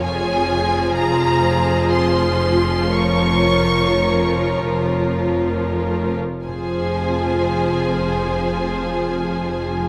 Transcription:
Already playing: C#5
0.03 F1 F2 F3 F4 G#4 G#5
0.95 C5 A#5
1.94 C6
2.95 A#4 C#5 C#6
6.44 F1 F2 F3 F4 G#4 C5 G#5

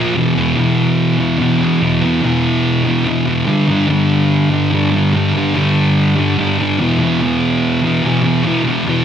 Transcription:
Already playing: A#2 F3 A#3
0.14 E2 B2 E3
0.35 B2 E3
0.55 E2 B2 E3
1.18 B2 E3
1.39 E2 B2
1.43 E3
1.60 E3
1.64 B2
1.81 E2 B2 E3
2.02 B2 E3
2.23 E2 B2 E3
2.84 B2 E3
3.05 E2 B2 E3
3.26 B2 E3
3.46 G2 D3 G3
3.68 D3 G3
3.88 G2 D3
3.92 G3
4.50 D3 G3
4.71 G2 D3 G3
4.92 G3
4.96 D3
5.13 G2 D3 G3
5.33 G3
5.38 D3
5.54 G2 D3 G3
6.16 D3 G3
6.37 G2 D3 G3
6.58 D3 G3
6.79 E2 B2 E3
7.00 E3
7.04 B2
7.20 E2 B2 E3
7.83 B2 E3
8.04 E2 B2 E3
8.23 B2 E3
8.43 E2 B2 E3
8.65 B2 E3
8.85 E2 B2 E3

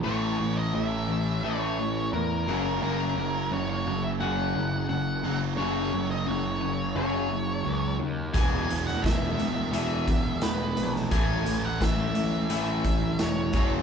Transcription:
0.03 A1 A2 E3 A3 C#5
0.08 A3 C#4 E4
0.38 A1 A2 E3
0.56 D#5
0.73 A1 A2 E3 E5
1.08 A2 E3
1.43 A1 A2 E3 A3 C#5
1.78 A2 E3
2.13 E2 A2 E3 A#4
2.47 F#1 F#2 C#3 F#3 A#3 C#4 F#4
2.83 F#1 F#2 C#3 F#3 A#4
3.16 F#1 F#2 C#3
3.51 F#1 F#2 C#3 C#5
3.70 C#5
3.86 F#1 F#2 C#3
4.04 E5
4.20 F#1 F#2 C#3 F#3 F#5
4.55 F#1 F#2 C#3
4.88 F#1 F#2 C#3 F#5
5.23 F#1 F#2 C#3 F#3 A#3 C#4 F#4
5.57 F#1 F#2 C#3 F#3 C#5
5.92 F#1 F#2 C#3
6.11 D#5
6.26 F#1 F#2 C#3 C#5
6.61 F#2 C#3
6.95 F#1 F#2 C#3 F#3 C#5
7.29 F#2 C#3
7.64 C#2 F#2 C#3
7.99 D#2 F#2 C#3
8.34 E1 E2 B2 E3 G#3 B3 E4 G#5, kick, closed hi-hat
8.68 E1 E2 B2, closed hi-hat
8.87 F#5, snare
9.02 E1 E2 B2 E5, kick, snare, closed hi-hat
9.38 E1 E2 B2, closed hi-hat
9.72 E1 E2 B2 E3 E5, closed hi-hat
10.07 E1 E2 B2, kick, closed hi-hat
10.41 E1 E2 B2 B4, snare, closed hi-hat
10.77 A#1 E2 B2, closed hi-hat
10.96 snare
11.11 A1 A2 E3 A3 C#4 E4 G#5, kick, closed hi-hat
11.46 A1 A2 E3, closed hi-hat
11.66 F#5
11.80 A1 A2 E3 E5, kick, snare, closed hi-hat
12.15 A2 E3, closed hi-hat
12.49 A1 A2 E3 A3 E5, closed hi-hat
12.84 A2 E3, kick, closed hi-hat
13.19 E1 A2 E3 C#5, snare, closed hi-hat
13.53 F#1 F#2 C#3 F#3 A#3 C#4, kick, closed hi-hat
13.57 F#4

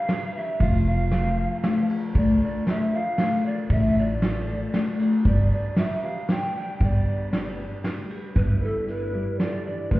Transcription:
Already playing: F5
0.08 G3 D4 G4 B4, snare, ride
0.33 D4 G4 B4 E5
0.59 F1 F3 A3 C4 F4 A4 F5, kick, ride
0.86 F5
1.11 A3 C4 F4 A4, snare, ride
1.63 A3 C4 F4 A4, snare, ride
1.89 ride
2.15 D2 D3 A3 D4 F4 A4 D5, kick, ride
2.44 D5
2.66 A3 D4 F4 A4 E5, snare, ride
2.93 D4 F4 A4 F5
3.18 A3 D4 F4 A4, snare, ride
3.46 D5
3.70 A1 D3 A3 D4 F4 A4 E5, kick, ride
3.98 D5
4.22 A3 D4 F4 A4, snare, ride
4.74 A3 D4 F4 A4, snare, ride
4.99 D4 F4 A4, ride
5.24 G1 G3 D4 G4 B4 D5, kick, ride
5.51 D5
5.76 G3 D4 G4 B4 E5, snare, ride
6.02 D4 G4 B4 F5
6.28 G3 D4 G4 B4 G5, snare, ride
6.56 G5
6.80 G1 G3 D4 G4 B4, kick, ride
6.84 D5
7.31 G3 D4 G4 B4, snare, ride
7.58 D4 G4 B4
7.83 G3 D4 G4 B4, snare, ride
8.10 ride
8.35 G1 G2 G3 D4 E4 B4, kick, closed hi-hat
8.63 E4 A4
8.86 G3 D4 E4 B4, closed hi-hat
9.13 G3 D4 E4 B4
9.39 D3 G3 D4 E4 B4 D5, snare, closed hi-hat
9.65 E3 D4 E4 B4 D5
9.91 F1 F3 A3 D4 A4 B4 C5, kick, closed hi-hat

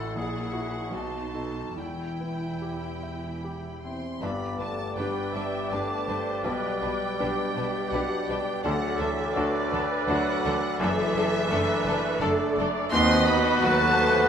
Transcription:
Already playing: A1 A2 E4 F#4 A4 F#5 C6
0.15 A#1 A#2 E4 G#4 F#5 C#6
0.53 E4 F#4
0.91 B1 B2 D#4 F#4 A5 C6
1.34 D#4 A4
1.74 E1 E2 E4 G5 B5
2.20 B3
2.62 G4
3.03 E5
3.44 G4
3.82 C4 E4 C6
4.20 G1 G2 G3 B3 D4 B4 D5 B5 D6
4.59 G1 G2 A3 D4 B4 A5
4.96 G1 G2 G3 B3 D4 B4 G5
5.01 G4
5.34 G1 G2 D4 B4 E5
5.70 G1 G2 A3 D4 B4 D5 A5
5.74 B3 D4 G4
6.07 G1 G2 D4 B4 C5
6.44 B1 B2 G3 D4 B4 G5
6.81 B1 B2 D4 B4
7.19 B1 B2 B3 D4 G4 B4
7.56 B1 B2 D4 B4
7.92 B1 B2 F#3 B3 D4 G4 B4 F#5
8.28 B1 B2 G3 D4 B4 G5
8.63 D2 D3 F#3 D4 A4 D5 F#5 D6
8.98 D2 D3 E3 D4 A4 E5
9.34 D2 D3 A3 D4 F#4 A4 B4 D5
9.72 D2 D3 D4 A4
10.05 D2 D3 F#3 D4 A4 F#5
10.09 A3 F#4
10.44 D2 D3 D4 A4
10.80 F#1 F#2 E3 A3 D4 A4 E5
11.15 F#1 F#2 D4 A4
11.49 F#1 F#2 A3 D4 A4 B4
11.85 F#1 F#2 D4 A4
12.20 F#1 F#2 D3 A3 D4 A4 D5
12.57 F#1 F#2 D4 A4 D5
12.92 D#2 D#3 B3 C4 F#4 B4 D#5 C6 F#6
13.26 B3 B5
13.30 F#4 B4
13.61 D#2 F#3 F#4 B4 A5
13.65 A3
13.98 F#4 B4 C5

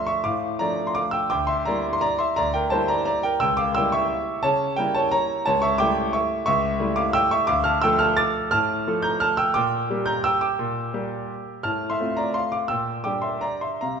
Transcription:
Already playing: F3 A3 D4
0.07 E5 C#6
0.24 A2 F5 D6
0.59 F3 A3 D4 D5 A#5
0.87 C6
0.95 F5 D6
1.11 G5 E6
1.30 D2 G5 D6
1.47 E5 C6
1.65 G3 A#3 E4 D5 A#5
1.93 C6
2.01 D5 A#5
2.19 E5 C6
2.36 D2 D5 A#5
2.54 A#4 G5
2.70 G3 A#3 E4 C5 A5
2.88 D5 A#5
3.05 D5 A#5
3.23 A#4 G5
3.40 C#2 G5 E6
3.57 F5 D6
3.75 G3 A#3 E4 G5 E6
3.92 E5 C#6
4.43 C#3 C#5 A5
4.76 G3 A#3 E4 A#4 G5
4.95 C#5 A5
5.12 C#5 A#5
5.46 C#2 C#5 A5
5.62 E5 C#6
5.78 G3 A3 E4 G5 D6
6.13 E5 C#6
6.46 C#2 E5 C#6
6.79 G3 A3 E4
6.96 F5 D6
7.13 G5 E6
7.31 E5 C#6
7.47 D2 F5 D6
7.64 A5 F6
7.82 F3 A3 A4 G5 E6
7.99 A5 F6
8.17 D6 A6
8.51 A2 A5 F6
8.87 F3 A3 A4
9.02 A#5 G6
9.20 A5 F6
9.37 G5 E6
9.54 A#2 G5 D6
9.90 G3 A#3 G4
10.06 A#5 G6
10.24 G5 E6
10.41 G5 D6
10.59 A#2
10.94 G3 A#3 G4
11.63 A2 A5 F6
11.90 E5 C6
12.00 A3 C4 F4
12.17 D5 A#5
12.34 F5 C6
12.52 F5 D6
12.68 A#2 G5 E6
13.04 G3 D4 G4 G5 D6
13.22 E5 C6
13.41 D5 A#5
13.61 E5 C6
13.81 C3 F5 A#5

